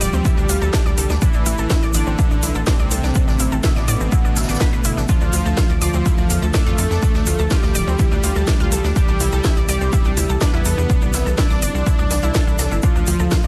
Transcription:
Already playing: D3 F3 G3 G4, downlifter
0.01 D1 D5 D6, open hi-hat, shaker
0.13 D2 C4 C5, shaker
0.25 E4 E5, kick, shaker
0.37 D2 D4 D5, shaker
0.49 D2 F4 F5, open hi-hat, shaker
0.62 D2 A4 A5, shaker
0.73 D4 D5, kick, snare, shaker
0.86 D2 D5 D6, shaker
0.98 C2 A4 A5, open hi-hat, shaker
1.10 D2 D4 D5, snare, shaker
1.22 E3 A3 D4 E4 D5, kick, shaker
1.33 A1 D4 D5, shaker
1.46 A1 E4 E5, open hi-hat, shaker
1.58 A1 A4 A5, shaker
1.70 E4 E5, kick, snare, shaker
1.82 A1 D5 D6, shaker
1.94 A1 D3 D4 D5 D6, open hi-hat, shaker
2.06 A1 C4 C5, shaker
2.18 E4 E5, kick, shaker
2.31 A1 D4 D5, shaker
2.42 B1 E4 E5, snare, open hi-hat, shaker
2.55 A1 A4 A5, shaker
2.67 C3 C4 D4 D5, kick, snare, shaker
2.79 C2 D5 D6, shaker
2.91 C2 A4 A5, open hi-hat, shaker
3.03 C2 D4 D5, snare, shaker
3.15 D3 D4 D5, kick, shaker
3.28 A1 D4 D5, snare, shaker
3.39 A1 E4 E5, open hi-hat, shaker
3.52 A1 A4 A5, shaker
3.63 B2 B3 E4 E5, kick, snare, shaker
3.76 A1 D5 D6, snare, shaker
3.88 A2 D5 D6, open hi-hat, shaker
4.00 A1 C4 C5, shaker
4.12 E4 E5, kick, shaker
4.24 A1 D4 D5, shaker
4.36 A1 E4 E5, snare, open hi-hat, shaker
4.43 snare, shaker
4.48 A1 D4 D5, snare, shaker
4.54 snare, shaker
4.60 B4 B5, kick, snare, shaker
4.73 A1 B4 B5, shaker
4.84 G1 E4 E5, open hi-hat, shaker
4.97 A1 D4 D5, snare, shaker
5.09 F3 D4 F4 D5, kick, shaker
5.21 D2 D4 D5, shaker
5.33 D2 F4 F5, open hi-hat, shaker
5.45 D2 A4 A5, shaker
5.57 F4 F5, kick, snare, shaker
5.70 D2 D5 D6, shaker
5.81 D2 F3 F4 D5 D6, open hi-hat, shaker
5.93 D2 C4 C5, shaker
6.06 E4 E5, kick, shaker
6.18 D2 D4 D5, shaker
6.29 E2 F4 F5, snare, open hi-hat, shaker
6.42 D2 A4 A5, shaker
6.54 A3 D4 A4 D5, kick, snare, shaker
6.66 F2 F4 F5, shaker
6.78 F2 A4 A5, open hi-hat, shaker
6.90 F2 D4 D5, snare, shaker
7.02 D4 D5, kick, shaker
7.15 D2 D4 D5, snare, shaker
7.26 D2 F4 F5, open hi-hat, shaker
7.39 D2 A4 A5, shaker
7.50 G3 F4 G4 F5, kick, snare, shaker
7.63 D2 D5 D6, snare, shaker
7.75 D1 D5 D6, open hi-hat, shaker
7.87 D2 C4 C5, shaker
7.99 E4 E5, kick, shaker
8.12 D2 D4 D5, shaker
8.23 D2 F4 F5, open hi-hat, shaker
8.36 D2 A4 A5, shaker
8.47 D4 D5, kick, snare, shaker
8.60 D2 F4 F5, shaker
8.72 C2 A4 A5, open hi-hat, shaker
8.84 D2 D4 D5, snare, shaker
8.96 C3 E3 G3 D4 G4 D5, kick, shaker
9.08 C2 D4 D5, shaker
9.20 C2 E4 E5, open hi-hat, shaker
9.32 C2 A4 A5, shaker
9.44 E4 E5, kick, snare, shaker
9.57 C2 D5 D6, shaker
9.69 C2 G3 G4 D5 D6, open hi-hat, shaker
9.81 C2 C4 C5, shaker
9.93 E4 E5, kick, shaker
10.05 C2 D4 D5, shaker
10.16 D2 E4 E5, snare, open hi-hat, shaker
10.29 C2 A4 A5, shaker
10.41 B3 D4 B4 D5, kick, snare, shaker
10.54 E2 E4 E5, shaker
10.65 E2 A4 A5, open hi-hat, shaker
10.78 E2 D4 D5, shaker
10.90 D4 D5, kick, shaker
11.02 C2 D4 D5, shaker
11.13 C2 E4 E5, snare, open hi-hat, shaker
11.26 C2 A4 A5, shaker
11.38 D4 E4 D5 E5, kick, snare, shaker
11.50 C2 D5 D6, snare, shaker
11.62 G1 D5 D6, open hi-hat, shaker
11.74 C2 C4 C5, shaker
11.86 E4 E5, kick, shaker
11.99 D2 D4 D5, shaker
12.11 C2 D4 D5, snare, open hi-hat, shaker
12.23 C2 E4 E5, shaker
12.34 A4 A5, kick, snare, shaker
12.47 C2 E4 E5, shaker
12.59 C2 A4 A5, snare, open hi-hat, shaker
12.71 G1 E4 E5, shaker
12.83 D3 F3 A3 D4 F4 D5, kick, shaker
12.95 D2 D4 D5, shaker
13.07 D2 F4 F5, open hi-hat, shaker
13.19 D2 A4 A5, shaker
13.31 F4 F5, kick, snare, shaker
13.43 D2 D5 D6, shaker

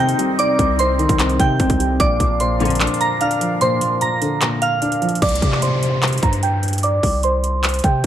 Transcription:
Already playing: C3 D#3 C4 D#4 A#4
0.00 C4 G5 G6
0.09 closed hi-hat
0.18 G3, closed hi-hat
0.39 C3 D5 D6, closed hi-hat
0.59 C2 C3, kick, closed hi-hat
0.79 C3 C5 C6, closed hi-hat
0.99 D#3, closed hi-hat
1.09 C2, kick, closed hi-hat
1.19 C3, clap, closed hi-hat
1.29 closed hi-hat
1.39 C3 G5 G6, kick, closed hi-hat
1.60 C2 C4, kick, closed hi-hat
1.70 C2, kick, closed hi-hat
1.80 G3, closed hi-hat
2.00 A#1 A#2 D4 A#4 D5 F5 D6, kick, closed hi-hat
2.20 A#1 A#2, kick, closed hi-hat
2.40 A#2 C5 C6, closed hi-hat
2.60 A#1 F2 D3, closed hi-hat
2.65 closed hi-hat
2.70 closed hi-hat
2.75 closed hi-hat
2.80 A#2, clap, closed hi-hat
2.87 closed hi-hat
2.94 closed hi-hat
3.01 A#5 A#6, closed hi-hat
3.21 D4 F5 F6, closed hi-hat
3.31 closed hi-hat
3.41 F3, closed hi-hat
3.61 A#2 C5 C6, closed hi-hat
3.81 A#2, closed hi-hat
4.01 A#2 A#5 A#6, closed hi-hat
4.22 D3, closed hi-hat
4.41 A#2, clap, closed hi-hat
4.62 F5 F6, closed hi-hat
4.82 D4, closed hi-hat
4.92 closed hi-hat
5.02 F3, closed hi-hat
5.09 closed hi-hat
5.15 closed hi-hat
5.22 C2 D5 D6, kick, closed hi-hat, crash, downlifter
5.29 closed hi-hat
5.35 closed hi-hat
5.42 C3, kick, closed hi-hat
5.52 clap
5.62 C5 C6, closed hi-hat
5.83 closed hi-hat
6.03 clap, closed hi-hat
6.08 closed hi-hat
6.13 closed hi-hat
6.18 closed hi-hat
6.23 G2 A#5 A#6, kick, closed hi-hat
6.33 closed hi-hat
6.43 G5 G6, closed hi-hat
6.63 closed hi-hat
6.68 closed hi-hat
6.73 closed hi-hat
6.78 closed hi-hat
6.83 D5 D6, closed hi-hat
7.03 C2, kick, open hi-hat
7.23 C5 C6, closed hi-hat
7.44 closed hi-hat
7.64 clap, closed hi-hat
7.69 closed hi-hat
7.74 closed hi-hat
7.79 closed hi-hat
7.84 C3 G5 G6, kick, closed hi-hat

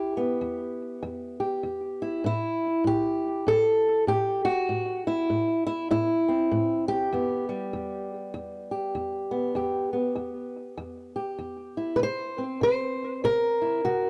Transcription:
Already playing: E2 E4 G4
0.17 B3
0.41 E2
1.03 E2
1.40 G4
1.63 E2
2.02 E4
2.24 A2 E4
2.84 A2 G4
3.47 A2 A4
4.07 A2 G4
4.45 F#4
4.69 A2
5.07 E4
5.30 A2
5.67 E4
5.91 A2 E4
6.28 C4
6.52 A2
6.88 G4
7.13 E2 B3
7.49 G3
7.73 E2
8.34 E2
8.71 G4
8.95 E2
9.31 B3
9.55 E2 G4
9.93 B3
10.15 E2
10.77 E2
11.16 G4
11.39 E2
11.77 E4
11.96 C3 B4
12.03 C5
12.38 C4
12.61 C3 C5
13.24 C3 A#4
13.62 E4
13.85 C3 F#4

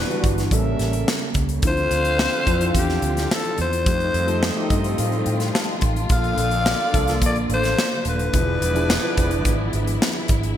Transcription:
Already playing: D3 E3 G3 B3 D4 F#4 G4 B4 D5
0.10 E3 G3 D4 F#4, closed hi-hat
0.24 G1, kick, closed hi-hat
0.38 snare, closed hi-hat
0.51 A1 C#3 G3 A#3 C#4 A4 A#4 E5, kick, closed hi-hat
0.79 A1, snare, closed hi-hat
0.93 closed hi-hat
1.08 snare
1.34 C#2, kick, closed hi-hat
1.49 closed hi-hat
1.62 D2 D3 F3 C4 D4 E4 A4 F5, kick, closed hi-hat
1.67 F4 C5
1.77 closed hi-hat
1.91 D2, closed hi-hat
2.05 closed hi-hat
2.19 snare
2.33 closed hi-hat
2.46 F2 E3 C4 D4 F4, kick, closed hi-hat
2.59 F3 C4 D4 E4, closed hi-hat
2.67 F4
2.75 E2 G4, kick, closed hi-hat
2.89 snare
3.02 D2, closed hi-hat
3.17 snare, closed hi-hat
3.31 A4, snare
3.45 closed hi-hat
3.58 E2 C5, closed hi-hat
3.73 closed hi-hat
3.86 F2 D#3 F3 G3 A3 C4 D#4 F4 G4 A4 D#5, kick, closed hi-hat
4.00 closed hi-hat
4.14 F2, closed hi-hat
4.27 F3 A3 D#4 A4, closed hi-hat
4.43 snare
4.56 F3 A3 D#4 G4
4.70 G2 D#5, kick, closed hi-hat
4.84 closed hi-hat
4.98 A2 F5, closed hi-hat
5.12 closed hi-hat
5.26 A2 G5, closed hi-hat
5.40 snare, closed hi-hat
5.54 A5, snare
5.81 A1 C6, kick, closed hi-hat
5.96 closed hi-hat
6.09 A#1 D3 F3 A#3 D4 G#4 A4 D5 F5, kick, closed hi-hat
6.17 A4
6.24 closed hi-hat
6.37 A#1, closed hi-hat
6.51 closed hi-hat
6.66 snare
6.93 C2 F3 A#3 D4 A4, kick, closed hi-hat
7.08 F3 A#3 D4 A4, snare, closed hi-hat
7.22 A#1, kick, closed hi-hat
7.26 D5
7.36 closed hi-hat
7.50 A1, closed hi-hat
7.54 C5
7.63 snare, closed hi-hat
7.78 snare
8.05 D#1, closed hi-hat
8.10 B4
8.19 closed hi-hat
8.33 E1 F3 G#3 B3 D4 E4 G#4 D5, kick, closed hi-hat
8.61 E1, closed hi-hat
8.74 F3 D4 E4 G#4, closed hi-hat
8.90 snare
9.03 F3 D4 E4 B4
9.17 F1, kick, closed hi-hat
9.31 closed hi-hat
9.45 G#1, kick, closed hi-hat
9.73 G#1, closed hi-hat
9.87 closed hi-hat
10.02 snare
10.28 G#1, kick, closed hi-hat
10.43 closed hi-hat

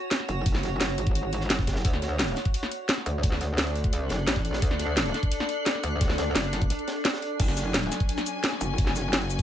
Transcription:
Already playing: F#4 C#5 F#5
0.11 snare, closed hi-hat
0.20 snare
0.29 F#1, closed hi-hat
0.46 kick, closed hi-hat
0.55 snare
0.63 snare, closed hi-hat
0.81 F#1, snare, closed hi-hat
0.89 closed hi-hat
0.98 G#1, closed hi-hat
1.07 kick, closed hi-hat
1.15 closed hi-hat
1.33 closed hi-hat
1.41 snare
1.50 F#1, snare, closed hi-hat
1.59 kick
1.67 kick, snare, closed hi-hat
1.76 snare, closed hi-hat
1.85 D2 D4, kick, closed hi-hat
1.93 snare
2.02 snare, closed hi-hat
2.07 A4 D5
2.19 snare, closed hi-hat
2.28 closed hi-hat
2.36 snare, closed hi-hat
2.45 kick, closed hi-hat
2.54 closed hi-hat
2.62 snare, closed hi-hat
2.71 closed hi-hat
2.89 snare, closed hi-hat
2.97 snare
3.06 D2, closed hi-hat
3.23 kick, closed hi-hat
3.32 snare
3.41 snare, closed hi-hat
3.57 D2, snare, closed hi-hat
3.67 closed hi-hat
3.75 closed hi-hat
3.84 kick, closed hi-hat
3.93 closed hi-hat
4.09 F#1, snare, closed hi-hat
4.27 A1, snare, closed hi-hat
4.36 kick
4.45 closed hi-hat
4.53 snare, closed hi-hat
4.62 D2, kick, closed hi-hat
4.71 snare
4.79 snare, closed hi-hat
4.97 snare, closed hi-hat
5.06 closed hi-hat
5.14 snare, closed hi-hat
5.23 kick, closed hi-hat
5.32 closed hi-hat
5.40 snare, closed hi-hat
5.49 closed hi-hat
5.66 snare, closed hi-hat
5.75 snare
5.83 D2, closed hi-hat
6.01 kick, snare, closed hi-hat
6.10 snare
6.18 snare, closed hi-hat
6.35 F#1, snare, closed hi-hat
6.44 closed hi-hat
6.53 snare, closed hi-hat
6.62 kick, closed hi-hat
6.70 closed hi-hat
6.79 closed hi-hat
6.88 snare, closed hi-hat
7.05 snare, closed hi-hat
7.13 snare, closed hi-hat
7.22 closed hi-hat
7.40 F#1 F#3 C#4 F#4 G#5, kick, closed hi-hat, crash
7.48 snare
7.57 snare, closed hi-hat, shaker
7.74 snare, closed hi-hat
7.83 closed hi-hat
7.92 C#5, snare, closed hi-hat, shaker
8.00 kick, closed hi-hat
8.09 closed hi-hat
8.18 snare, shaker
8.26 closed hi-hat, shaker
8.39 G#5
8.43 snare, closed hi-hat
8.52 snare
8.61 F#1, closed hi-hat, shaker
8.78 kick, closed hi-hat
8.87 snare
8.96 snare, closed hi-hat, shaker
9.13 F#1, snare, closed hi-hat
9.22 closed hi-hat
9.30 closed hi-hat, shaker
9.39 closed hi-hat, shaker

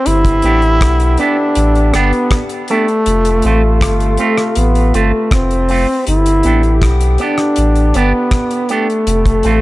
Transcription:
0.05 G1 D3 B3 E4 G4, closed hi-hat
0.25 kick, closed hi-hat
0.42 A1 B3 D4 G4, closed hi-hat
0.62 closed hi-hat
0.81 B1, kick, cross-stick, closed hi-hat
1.00 muted clean electric guitar stroke, closed hi-hat
1.17 B3 D4 G4, closed hi-hat
1.55 A1, closed hi-hat
1.75 closed hi-hat
1.94 G1 B3 D4 G4, cross-stick, closed hi-hat
2.13 closed hi-hat
2.31 kick, cross-stick, closed hi-hat
2.49 closed hi-hat
2.68 A3 B3 D4 G4, closed hi-hat
2.88 closed hi-hat
3.06 F1 C3 A3 F4, closed hi-hat
3.25 closed hi-hat
3.42 A1 A3 C4 F4, closed hi-hat
3.81 G1, kick, cross-stick, closed hi-hat
4.00 muted clean electric guitar stroke, closed hi-hat
4.17 A3 C4 F4, closed hi-hat
4.38 cross-stick, closed hi-hat
4.55 A1 B3, closed hi-hat
4.75 closed hi-hat
4.94 G1 A3 C4 F4, closed hi-hat
5.31 F1 C4, kick, cross-stick, closed hi-hat
5.51 closed hi-hat
5.69 A3 C4 F4, open hi-hat
6.06 G1 D3 B3 E4 G4, closed hi-hat
6.26 closed hi-hat
6.43 A1 B3 D4 G4, closed hi-hat
6.63 closed hi-hat
6.82 B1, kick, cross-stick, closed hi-hat
7.01 muted clean electric guitar stroke, closed hi-hat
7.18 B3 D4 G4, closed hi-hat
7.38 cross-stick, closed hi-hat
7.56 A1, closed hi-hat
7.76 closed hi-hat
7.94 G1 B3 D4 G4, closed hi-hat
8.31 kick, cross-stick, closed hi-hat
8.51 closed hi-hat
8.69 A3 B3 D4 G4, closed hi-hat
8.90 closed hi-hat
9.07 F1 C3 F3 A4, closed hi-hat
9.26 kick, closed hi-hat
9.43 A1 A3 C4 F4, closed hi-hat

